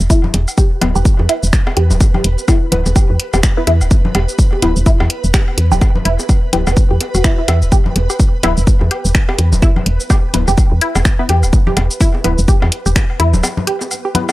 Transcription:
0.00 E1, shaker
0.10 E4 B4, kick, shaker
0.24 low conga
0.34 E1, closed hi-hat, high bongo
0.48 low woodblock, shaker
0.58 G4, kick, shaker
0.81 D1 B3 E4 B4, closed hi-hat, high bongo, low conga, low woodblock
0.95 E1 G4, shaker
1.05 kick, shaker
1.19 E2, high bongo
1.29 E4, closed hi-hat, low woodblock
1.43 E1, shaker
1.53 finger snap, kick, shaker
1.67 high bongo, low woodblock
1.77 E2 G4, closed hi-hat
1.91 D1, low conga, shaker
2.00 kick, high bongo, shaker
2.14 G4, low conga, low woodblock
2.24 E1, closed hi-hat
2.38 shaker
2.48 E4, kick, high bongo, low woodblock, shaker
2.72 D1 B3 E4 B4, closed hi-hat, low conga
2.86 E1, high bongo, shaker
2.96 G4, kick, low woodblock, shaker
3.10 E2
3.20 closed hi-hat
3.33 E1 G4, high bongo, low woodblock, shaker
3.43 finger snap, kick, shaker
3.57 B3 E4 B4
3.67 E2 E4, closed hi-hat, high bongo
3.81 D1, low woodblock, shaker
3.91 kick, shaker
4.05 low conga
4.15 E1 G4, closed hi-hat, high bongo, low woodblock
4.29 shaker
4.39 kick, shaker
4.53 G4, high bongo
4.62 D1 B3 E4 B4, closed hi-hat, low conga, low woodblock
4.76 E1, shaker
4.86 E4, kick, shaker
5.00 E2, high bongo, low woodblock
5.10 closed hi-hat
5.24 E1, shaker
5.34 G4, finger snap, kick, high bongo, shaker
5.48 low woodblock
5.58 E2, closed hi-hat
5.72 D1 G4, low conga, shaker
5.81 kick, high bongo, low woodblock, shaker
5.95 low conga
6.05 E1 E4, closed hi-hat
6.19 high bongo, shaker
6.29 kick, low woodblock, shaker
6.53 D1 B3 E4 G4 B4, closed hi-hat, low conga
6.67 E1, high bongo, low woodblock, shaker
6.77 kick, shaker
6.91 E2 G4
7.01 closed hi-hat, high bongo
7.14 E1 F#4, low woodblock, shaker
7.24 E4, finger snap, kick, shaker
7.38 E4
7.48 E2 E5, closed hi-hat, high bongo, low woodblock
7.62 D1, shaker
7.72 G4, kick, shaker
7.86 low conga
7.96 E1, closed hi-hat, high bongo
8.10 G4, low woodblock, shaker
8.20 kick, shaker
8.43 D1 B3 E4 B4, closed hi-hat, high bongo, low conga, low woodblock
8.57 E1, shaker
8.67 kick, shaker
8.81 E2, high bongo
8.91 G4, closed hi-hat, low woodblock
9.05 E1, shaker
9.15 finger snap, kick, shaker
9.29 G4, high bongo, low woodblock
9.38 E2, closed hi-hat
9.52 D1, low conga, shaker
9.62 E4, kick, high bongo, shaker
9.76 low conga, low woodblock
9.86 E1, closed hi-hat
10.00 shaker
10.10 G4, kick, high bongo, low woodblock, shaker
10.34 D1 B3 E4 B4, closed hi-hat, low conga
10.48 E1 G4, high bongo, shaker
10.58 kick, low woodblock, shaker
10.72 E2
10.81 E4, closed hi-hat
10.95 E1, high bongo, low woodblock, shaker
11.05 finger snap, kick, shaker
11.19 B3 E4 B4
11.29 E2 G4, closed hi-hat, high bongo
11.43 D1, low woodblock, shaker
11.53 kick, shaker
11.67 G4, low conga
11.77 E1, closed hi-hat, high bongo, low woodblock
11.91 shaker
12.01 E4, kick, shaker
12.15 high bongo
12.24 D1 B3 E4 B4, closed hi-hat, low conga, low woodblock
12.38 E1, shaker
12.48 G4, kick, shaker
12.62 E2, high bongo, low woodblock
12.72 closed hi-hat
12.86 E1 G4, shaker
12.96 finger snap, kick, high bongo, shaker
13.10 low woodblock
13.20 E2 E4, closed hi-hat
13.34 D1, low conga, shaker
13.43 high bongo, low woodblock, shaker
13.57 low conga
13.67 G4, closed hi-hat
13.81 high bongo, shaker
13.91 low woodblock, shaker
14.05 G4
14.15 B3 E4 B4, closed hi-hat, low conga
14.29 high bongo, low woodblock, shaker

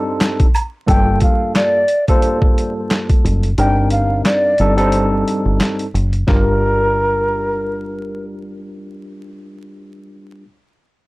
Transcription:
Already playing: G2 G3 C4 D#4 A4
0.20 snare, clap, closed hi-hat, shaker
0.40 kick, closed hi-hat
0.55 closed hi-hat, high woodblock, shaker
0.87 G1 G2 G3 A#3 F4 A4 G5, kick, closed hi-hat
1.21 F5, kick, closed hi-hat
1.55 D5, snare, clap, closed hi-hat
1.88 closed hi-hat
2.08 G2 G3 A#3 F4 A4 C5, kick, closed hi-hat
2.22 closed hi-hat
2.42 kick
2.58 closed hi-hat
2.90 snare, clap, closed hi-hat
3.10 kick, closed hi-hat
3.25 F#1, closed hi-hat
3.43 closed hi-hat
3.58 G1 G2 G3 C4 D4 D#4 A#4 G5, closed hi-hat
3.90 F5, closed hi-hat
4.24 D5, snare, clap, closed hi-hat
4.58 G1 G2 G3 C4 D#4 A4, closed hi-hat
4.76 G2 G3 C4 D#4 A4 C5, closed hi-hat
4.92 closed hi-hat
5.28 closed hi-hat
5.45 G1
5.60 snare, clap, closed hi-hat
5.79 closed hi-hat
5.94 F#1, closed hi-hat
6.13 closed hi-hat
6.27 G1 G3 D4 F4 G4 A#4, kick, snare

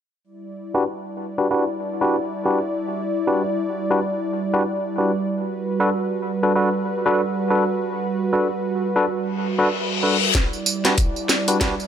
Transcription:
0.24 G3 E4 D5
0.74 D4 F#4 G4 B4
1.38 D4 F#4 G4 B4
1.51 D4 F#4 G4 B4
2.01 D4 F#4 G4 B4
2.46 D4 F#4 G4 B4
3.27 D4 F#4 G4 B4
3.90 D4 F#4 G4 B4
4.53 D4 F#4 G4 B4
4.98 D4 F#4 G4 B4
5.30 F#4 B4
5.80 D4 F#4 A4 B4
6.43 D4 F#4 A4 B4
6.56 D4 F#4 A4 B4
7.06 D4 F#4 A4 B4
7.50 D4 F#4 A4 B4
8.33 D4 F#4 A4 B4
8.96 D4 F#4 A4 B4
9.08 reverse cymbal
9.58 D4 F#4 A4 B4
10.03 D4 F#4 A4 B4
10.34 G3 E4 D5, kick, snare, closed hi-hat, tambourine, riser
10.53 tambourine
10.66 tambourine
10.85 D4 F#4 G4 B4, snare, closed hi-hat
10.98 kick, closed hi-hat, tambourine
11.16 tambourine
11.29 snare, tambourine
11.48 D4 F#4 G4 B4, closed hi-hat, tambourine
11.61 D4 F#4 G4 B4, kick, snare, closed hi-hat, tambourine
11.80 tambourine

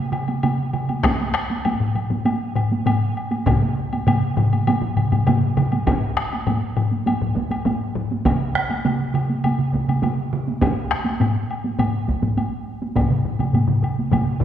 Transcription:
0.12 taiko mid, high woodblock
0.28 taiko high, high woodblock
0.43 taiko mid, taiko high, high woodblock
0.73 taiko mid, high woodblock
0.89 taiko high, high woodblock
1.04 taiko rim, taiko, taiko high, high woodblock
1.20 taiko high
1.34 taiko rim, high woodblock
1.50 taiko high
1.65 taiko low-mid, taiko high, high woodblock
1.80 taiko low-mid
1.95 taiko low-mid, high woodblock
2.10 taiko low-mid, taiko high
2.26 taiko high, high woodblock
2.55 taiko low-mid, high woodblock
2.71 taiko high
2.86 taiko low-mid, taiko high, high woodblock
3.17 high woodblock
3.31 taiko high, high woodblock
3.46 taiko, taiko low-mid, taiko mid, taiko high, high woodblock
3.63 taiko high
3.93 taiko high, high woodblock
4.07 taiko low-mid, taiko mid, taiko high, high woodblock
4.37 taiko low-mid, taiko mid, high woodblock
4.53 taiko high, high woodblock
4.67 taiko low-mid, taiko mid, taiko high, high woodblock
4.82 taiko low-mid, taiko mid
4.97 taiko low-mid, taiko mid, high woodblock
5.12 taiko low-mid, taiko mid, taiko high, high woodblock
5.27 taiko low-mid, taiko mid, taiko high, high woodblock
5.57 taiko low-mid, taiko mid, high woodblock
5.72 taiko high, high woodblock
5.87 taiko, taiko low-mid, taiko high, high woodblock
6.17 taiko rim
6.32 taiko high, high woodblock
6.47 taiko low-mid, taiko high, high woodblock
6.77 taiko low-mid, high woodblock
6.92 taiko high
7.06 taiko low-mid, taiko high, high woodblock
7.22 taiko low-mid
7.36 taiko, taiko low-mid, taiko high
7.51 taiko low-mid, taiko high, high woodblock
7.66 taiko low-mid, taiko high, high woodblock
7.95 taiko low-mid
8.11 taiko high
8.25 taiko, taiko mid, taiko high, high woodblock
8.55 taiko rim
8.70 taiko high, high woodblock
8.85 taiko mid, taiko high, high woodblock
9.14 taiko mid, high woodblock
9.30 taiko high
9.44 taiko mid, taiko high, high woodblock
9.59 taiko mid
9.73 taiko, taiko mid, taiko high
9.88 taiko mid, taiko high, high woodblock
10.03 taiko mid, taiko high, high woodblock
10.33 taiko mid
10.47 taiko high
10.61 taiko, taiko low-mid, taiko high, high woodblock
10.91 taiko rim
11.05 taiko high, high woodblock
11.20 taiko low-mid, taiko high, high woodblock
11.51 high woodblock
11.64 taiko high
11.79 taiko low-mid, taiko high, high woodblock
12.08 taiko, taiko high
12.22 taiko low-mid, taiko high
12.37 taiko high, high woodblock
12.82 taiko high
12.95 taiko, taiko low-mid, taiko mid, taiko high, high woodblock
13.10 taiko low-mid, taiko mid
13.25 taiko low-mid, taiko mid
13.39 taiko low-mid, taiko mid, taiko high, high woodblock
13.53 taiko low-mid, taiko mid, taiko high, high woodblock
13.68 taiko low-mid, taiko mid
13.82 taiko low-mid, taiko mid, high woodblock
13.99 taiko high
14.11 taiko, taiko low-mid, taiko mid, taiko high, high woodblock
14.40 taiko, taiko low-mid, taiko mid

